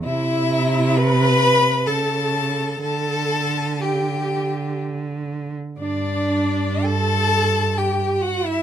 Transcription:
X:1
M:3/4
L:1/16
Q:1/4=62
K:G
V:1 name="Violin"
e4 b4 a4 | a4 g4 z4 | d4 a4 g2 f e |]
V:2 name="Viola"
E4 B4 A4 | A4 G4 z4 | D4 A4 G2 F E |]
V:3 name="Violin"
E4 B4 A4 | A4 G4 z4 | D4 A4 G2 F E |]
V:4 name="Cello" clef=bass
C,8 ^C,4 | D,12 | G,,12 |]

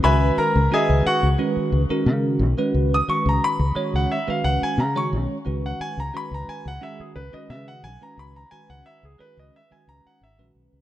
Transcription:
X:1
M:4/4
L:1/16
Q:1/4=88
K:C#dor
V:1 name="Grand piano"
[Begb]2 [Aa]2 [Gdeg]2 [Ff]2 z8 | z d' c' a b3 f e ^e f g a c' z2 | z f g a b a g f e G B d e f g a | b a g f e G B d e g a f e2 z2 |]
V:2 name="Tine electric piano"
[D,G,CFB]3 z [D,G,CFB]3 z [D,G,CFB]2 z [D,G,CFA]3 z [D,G,CFB]- | [D,G,CFB] z [D,G,CFB]3 z [D,G,CFc]2 z [D,G,CFB]3 z [D,G,CFc]2 z | [D,G,CFB]3 z [D,G,CFB]3 z [D,G,CFG]2 z [D,G,CFB]3 z [D,G,CFB]- | [D,G,CFB] z [D,G,CFB]3 z [D,G,CFB]2 z [D,G,CFB]3 z [D,G,CFB]2 z |]
V:3 name="Fingered electric bass" clef=bass
C,,2 z C,, z C,, z C,, z2 C,, z C,2 B,,, z | C,,2 z C,, z C,, z C,, z2 C,, z C,2 B,,, z | C,,2 z C,, z C,, z C,, z2 C,, z C,2 B,,, z | C,,2 z C,, z C,, z C,, z2 C,, z G,,, A,,, B,,, C,, |]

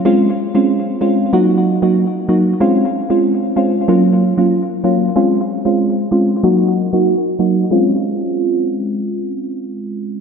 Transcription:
X:1
M:4/4
L:1/16
Q:"Swing 16ths" 1/4=94
K:Db
V:1 name="FM electric piano"
[A,CDF] z2 [A,CDF]3 [A,CDF]2 [G,B,EG]3 [G,B,EG] z2 [G,B,EG] z | [A,CDF] z2 [A,CDF]3 [A,CDF]2 [G,B,DF]3 [G,B,DF] z2 [G,B,DF] z | [A,CDF] z2 [A,CDF]3 [A,CDF]2 [G,B,EG]3 [G,B,EG] z2 [G,B,EG] z | [A,CDF]16 |]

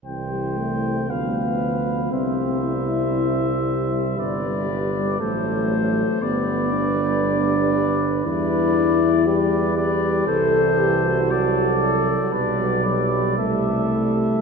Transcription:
X:1
M:4/4
L:1/8
Q:1/4=117
K:C
V:1 name="Trumpet"
g4 f4 | e8 | d4 c4 | d8 |
[K:Ador] d4 d2 d2 | c4 d4 | d2 d2 e4 |]
V:2 name="Flugelhorn"
c4 B4 | c8 | B4 A4 | B8 |
[K:Ador] B4 B2 B2 | A4 A4 | B2 B2 A4 |]
V:3 name="French horn"
z G, A,2 B,4 | C2 E6 | z G, G,2 A,4 | B,2 D6 |
[K:Ador] E4 G2 G2 | A z G F4- F | z F, G,2 A,4 |]
V:4 name="Trombone" clef=bass
E,4 F,4 | G,8- | G,4 ^F,4 | G,8 |
[K:Ador] G,4 G,2 G,2 | E,4 F,4 | G,2 G,2 G,4 |]
V:5 name="Tuba" clef=bass
C,,4 D,,4 | C,,8 | G,,,4 A,,,4 | G,,,8 |
[K:Ador] E,,8 | C,,8 | B,,,4 C,,4 |]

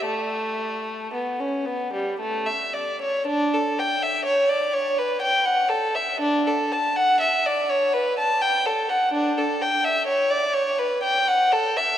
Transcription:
X:1
M:3/4
L:1/16
Q:1/4=62
K:Amix
V:1 name="Violin"
A,4 B, C B, G, A, e d c | D A g e c d c B g f A e | D A a f e d c B a g A f | D A g e c d c B g f A e |]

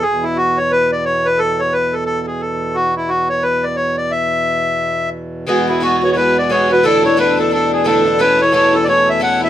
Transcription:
X:1
M:4/4
L:1/16
Q:"Swing" 1/4=176
K:Emix
V:1 name="Accordion"
G2 E2 F2 c2 B2 d2 c2 B2 | A2 c2 B2 A2 A2 G2 A4 | F2 E2 F2 c2 B2 d2 c2 d2 | e12 z4 |
G2 E2 F2 c3/2 c/2 B2 d2 c2 B2 | A2 c2 B2 A2 A2 G2 A4 | B2 c2 c2 A3/2 d/2 c2 e2 f2 e3/2 z/2 |]
V:2 name="Twelve-string acoustic guitar"
z16 | z16 | z16 | z16 |
[E,G,B,F]2 [G,B,F]2 [E,G,B,F]2 [G,B,F]2 [E,G,B,F]4 [E,G,B,F]2 [G,B,F]2 | [D,,A,,D,A,DE]2 [D,A,DE]2 [D,,A,,D,A,DE]2 [D,A,DE]2 [D,A,DE]4 [D,,A,,D,A,DE]2 [D,A,DE]2 | [A,,E,A,CE]2 [A,CE]2 [A,,E,A,CE]2 [A,CE]2 [E,A,CE]4 [A,,E,A,CE]2 [A,CE]2 |]
V:3 name="Harmonium" clef=bass
[E,,B,,]16- | [E,,B,,]16- | [E,,B,,]16- | [E,,B,,]16 |
[E,,B,,]16- | [E,,B,,]16- | [E,,B,,]16 |]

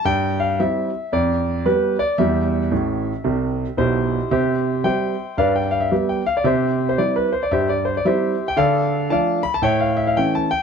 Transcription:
X:1
M:4/4
L:1/16
Q:"Swing" 1/4=113
K:C
V:1 name="Grand piano"
g2 f2 e4 d4 B2 d2 | e12 [EGc]4 | [Gce]4 [ceg]4 [Bdf] g f e2 g f d | [Gce]3 c d B c d [Gce] d c d [Gce]3 g |
[Adf]4 [dfa]2 b a [^ceg] f e f g a g2 |]
V:2 name="Grand piano" clef=bass
G,,4 [G,CE]4 F,,4 [G,B,G]4 | [E,,G,]4 [A,,,A,,]4 [C,,C,]4 [B,,,B,,]4 | C,4 [G,CG]4 G,,4 [G,B,G]4 | C,4 [G,CE]4 G,,4 [G,CE]4 |
D,4 [F,A,D]4 A,,4 [E,A,^C]4 |]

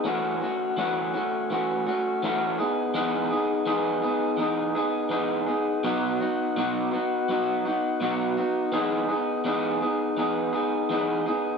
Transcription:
X:1
M:4/4
L:1/8
Q:"Swing 16ths" 1/4=83
K:E
V:1 name="Clean electric guitar"
[E,A,CF] [A,CF] [E,A,CF] [A,CF] [E,A,CF] [A,CF] [E,A,CF] [B,DG] | [E,B,DG] [B,DG] [E,B,DG] [B,DG] [E,B,DG] [B,DG] [E,B,DG] [B,DG] | [B,,F,B,DF] [B,DF] [B,,F,B,DF] [B,DF] [F,B,DF] [B,DF] [B,,F,B,DF] [B,DF] | [E,B,DG] [B,DG] [E,B,DG] [B,DG] [E,B,DG] [B,DG] [E,B,DG] [B,DG] |]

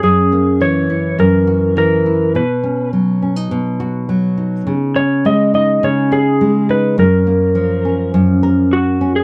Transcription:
X:1
M:4/4
L:1/16
Q:1/4=104
K:F#
V:1 name="Electric slide guitar"
G4 c4 A4 A4 | B4 z12 | z2 c2 d2 d2 c2 G4 B2 | A8 z4 F3 G |]
V:2 name="Nylon-string guitar"
F,,2 A,2 =E,2 =E2 F,,2 F2 E,2 E2 | B,,2 C2 F,2 C D B,,2 F2 F,2 D2 | C,2 C2 G,2 D2 C,2 G2 G,2 D2 | F,,2 A,2 E,2 C2 F,,2 A4 C2 |]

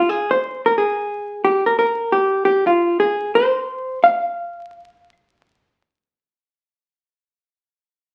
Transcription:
X:1
M:4/4
L:1/8
Q:"Swing" 1/4=177
K:Fm
V:1 name="Hollow-body jazz guitar"
A c2 B A4 | G B B2 G2 G F- | F A2 c4 f- | f6 z2 |
z8 | z8 |]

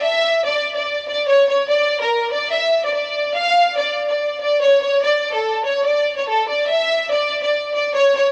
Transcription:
X:1
M:4/4
L:1/16
Q:1/4=144
K:Dm
V:1 name="Violin section"
e4 d3 d3 d2 ^c2 c2 | d3 B3 d2 e3 d d4 | f4 d3 d3 d2 ^c2 c2 | d3 A3 ^c2 d3 c A2 d2 |
e4 d3 d3 d2 ^c2 c2 |]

